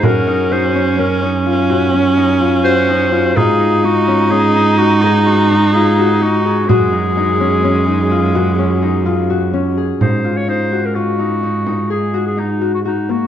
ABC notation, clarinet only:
X:1
M:7/4
L:1/16
Q:1/4=126
K:Abmix
V:1 name="Clarinet"
B4 c4 B2 z12 c6 | A4 G4 A4 G2 E2 G4 A4 G4 | A24 z4 | c3 d c3 B G8 A3 A E3 G E2 G2 |]